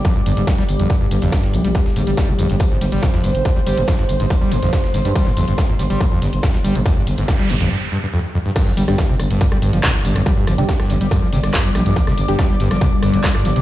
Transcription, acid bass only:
X:1
M:4/4
L:1/16
Q:1/4=141
K:Cm
V:1 name="Acid bass" clef=bass
F,, G,, G,, A,, G, G, z F,, G,, G,, G,, F,, G,,2 B,, G, | G,, z A,, G, G, G,, F,, G,, z A,, G, G, G,, F,, G,, z | A,, G, G, G,, F,, G,, z A,, G, G, G,, F,, G,, z A,, G, | G, G,, F,, G,, z A,, G, G, G,, F,, G,, z A,, G, G, G,, |
F,, G,, z A,, G, G, G,, F,, G,, z G,, G,, F,, z F,, G,, | G,, F,, G, G,, F, C, z G,, F,, G, G,, F, C, z G,, F,, | G, G,, F, C, z G,, F,, G, G,, F, C, z G,, F,, G, G,, | F, C, z G,, F,, G, G,, F, C, z G,, F,, G, G,, F, C, |]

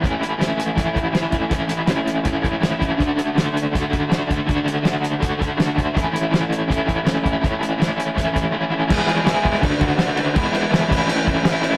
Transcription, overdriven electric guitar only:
X:1
M:4/4
L:1/8
Q:1/4=162
K:A
V:1 name="Overdriven electric guitar"
[A,,E,A,CE] [A,CE] [E,A,CE]2 [A,,E,A,CE] [A,CE] [E,A,CE] [A,CE] | [A,,E,A,CE] [A,CE] [E,A,CE]2 [A,,E,A,CE] [A,CE] [E,A,CE] [A,CE] | [D,A,DF] [A,DF] [D,A,DF]2 [D,A,DF] [A,DF] [D,A,DF] [A,DF] | [D,A,DF] [A,DF] [D,A,DF]2 [D,A,DF] [A,DF] [D,A,DF] [A,DF] |
[A,,E,A,CE] [A,CE] [E,A,CE]2 [A,,E,A,CE] [A,CE] [E,A,CE] [A,CE] | [A,,E,A,CE] [A,CE] [E,A,CE]2 [A,,E,A,CE] [A,CE] [E,A,CE] [A,CE] | [E,G,B,EG] [B,EG] [G,B,EG]2 [D,A,DF] [A,DF] [D,A,DF] [A,DF] | [E,G,B,E] [G,B,E] [E,G,B,E] [A,,E,A,CE] [A,,E,A,CE] [A,CE] [E,A,CE] [A,CE] |]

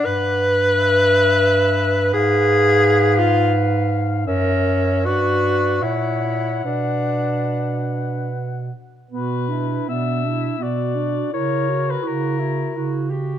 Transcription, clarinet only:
X:1
M:3/4
L:1/8
Q:1/4=83
K:Bm
V:1 name="Clarinet"
B6- | B6 | ^A2 B2 c2 | B4- B z |
B, D B, D B, D | E F E F E F |]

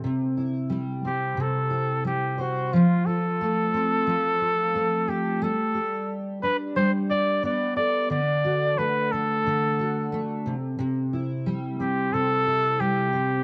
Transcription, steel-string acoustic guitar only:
X:1
M:4/4
L:1/8
Q:1/4=89
K:Clyd
V:1 name="Steel-string acoustic guitar"
C, E G, C C, E G, c | =F, =F A, C F, F A, A | G, G2 D G, G B, A | D, F A, D D, F A, C, |
C, E G, C C, E G, c |]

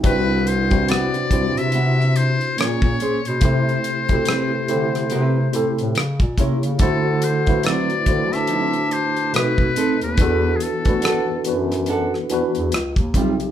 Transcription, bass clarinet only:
X:1
M:4/4
L:1/16
Q:"Swing 16ths" 1/4=71
K:Ador
V:1 name="Bass clarinet" clef=bass
C,,4- C,, z C,, C,4- C, _B,, B,, z =B,, | C,2 z B,, z D, D,2 C,2 A,, A,, ^C, ^A,, =C, ^C, | D,4- D, z D, D4- D B,, B,, z ^D,, | E,,2 z D,, z F,, F,,4 E,, E,, ^C,, ^D,, B,,,2 |]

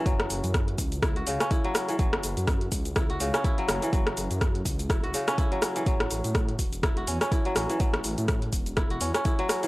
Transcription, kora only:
X:1
M:4/4
L:1/16
Q:"Swing 16ths" 1/4=124
K:F#m
V:1 name="Kora"
F, z6 z E F C, C E F, C E, | F, z6 z E F C, C E F, C E, | F, z6 z E F C, C E F, C E, | F, z6 z E F C C E F, C E, |
F, z6 z E F C C E F, C E, |]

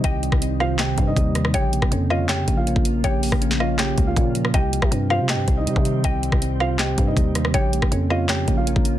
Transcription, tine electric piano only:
X:1
M:4/4
L:1/8
Q:1/4=160
K:Cphr
V:1 name="Tine electric piano" clef=bass
[C,E,G,] G, C c C, G, G, E, | D, B, D d D, B, B, F, | D, B, D d D, B, B, F, | C, G, C c C, G, G, E, |
C, G, C c C, G, G, E, | D, B, D d D, B, B, F, |]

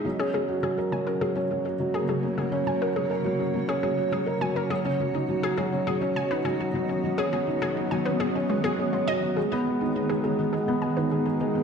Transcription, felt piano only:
X:1
M:4/4
L:1/16
Q:1/4=103
K:F#mix
V:1 name="Felt piano"
F, C F, F F, A F, C F, C F, F F, A F, C | F, C F, F F, A F, C F, C F, F F, A F, C | F, C F, D F, F F, C F, C F, D F, F F, C | F, C F, D F, F F, C F, C C F, C C F, F |
G, B, G, D G, G G, B, G, B, G, D G, G G, B, |]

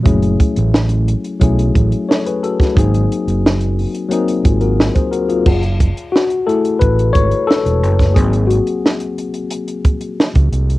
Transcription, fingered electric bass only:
X:1
M:4/4
L:1/16
Q:1/4=89
K:F#m
V:1 name="Fingered electric bass" clef=bass
F,,,2 z A,,,4 z B,,,2 A,,, z4 z | G,,,2 z F,,,4 z3 G,,,3 z3 | F,,,3 z4 z A,,,2 G,,, z2 E,,, F,,,2 | G,,,3 z8 z2 C,, ^B,,,2 |]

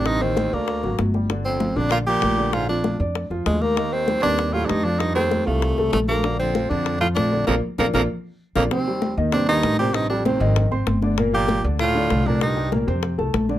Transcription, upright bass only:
X:1
M:4/4
L:1/8
Q:1/4=194
K:Bb
V:1 name="Upright bass" clef=bass
A,,,3 D,,2 _A,,, G,,,2- | G,,,3 B,,,3 B,,,2- | B,,,3 F,,2 F,, E,,2- | E,,3 E,,3 F,,2- |
F,,3 C,,2 C,, B,,,2- | B,,,3 F,,3 B,,,2 | B,,, z B,,, B,,, z3 B,,, | z3 E,,3 A,,,2- |
A,,,3 _A,,,2 A,,, G,,,2- | G,,,3 D,,3 C,,2- | C,,3 F,,2 C,, B,,,2 |]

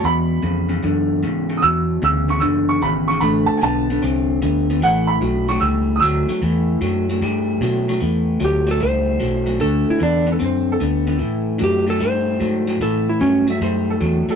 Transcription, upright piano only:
X:1
M:4/4
L:1/8
Q:"Swing" 1/4=150
K:D
V:1 name="Upright piano"
b4 z4 | [^d'e'] z e' c' e' c' b c' | b a [^ga]2 z4 | f b2 c' e'2 [^d'e']2- |
[^d'e']4 z4 | z8 | z3 A =c A3- | A z6 z |
z3 e =c A2 A |]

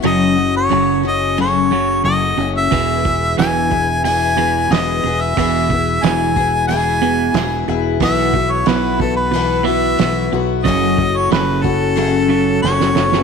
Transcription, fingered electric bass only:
X:1
M:4/4
L:1/8
Q:1/4=91
K:E
V:1 name="Fingered electric bass" clef=bass
F,,,2 F,,,4 F,,, F,,, | E,,,2 E,,,4 E,,, E,,, | E,,,2 E,,,4 E,,, E,,, | B,,,2 B,,,4 B,,, B,,, |
F,,,2 F,,,4 F,,, F,,, |]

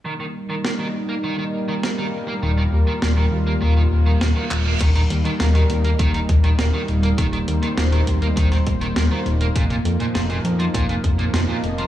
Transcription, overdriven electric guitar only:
X:1
M:4/4
L:1/16
Q:1/4=101
K:Eb
V:1 name="Overdriven electric guitar" clef=bass
E, E, z E, B, E, z B, E, E, z E, B, E, z B, | E, E, z E, B, E, z B, E, E, z E, B, E, z B, | E, E, z E, B, E, z B, E, E, z E, B, E, z B, | E, E, z E, B, E, z B, E, E, z E, B, E, z B, |
B,, B,, z B,, F, B,, z F, B,, B,, z B,, F, B,, z F, |]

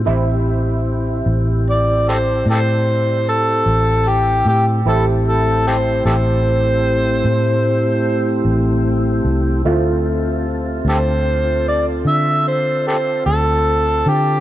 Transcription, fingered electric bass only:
X:1
M:12/8
L:1/8
Q:3/8=50
K:Am
V:1 name="Fingered electric bass" clef=bass
A,,,3 A,,,3 A,,3 A,,,2 A,, | A,,,3 A,,,3 A,,3 A,,,2 C,, | D,,3 D,,3 D,3 D,,2 D, |]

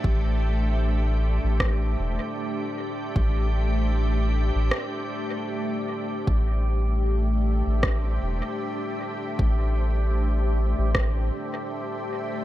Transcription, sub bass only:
X:1
M:4/4
L:1/16
Q:"Swing 16ths" 1/4=77
K:C
V:1 name="Sub bass" clef=bass
A,,,6- A,,, A,,,3 E,,, z4 z | A,,,6- A,,, A,,, z8 | A,,,6- A,,, A,,,3 E,,, z4 z | A,,,6- A,,, A,,,3 z6 |]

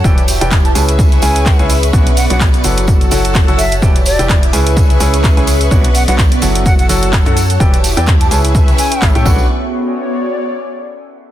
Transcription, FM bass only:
X:1
M:4/4
L:1/16
Q:"Swing 16ths" 1/4=127
K:Bm
V:1 name="FM bass" clef=bass
E,,,3 E,,,3 C,,4 C,,3 C,,3 | B,,,3 B,,,3 F,,,4 F,,,3 F,,,3 | E,,,3 E,,,3 C,,4 C,,3 C,,3 | B,,,3 B,,,3 F,,,4 F,,,3 F,,3 |
E,,,3 E,,3 C,,4 z2 A,,, A,, B,,,2 | z16 |]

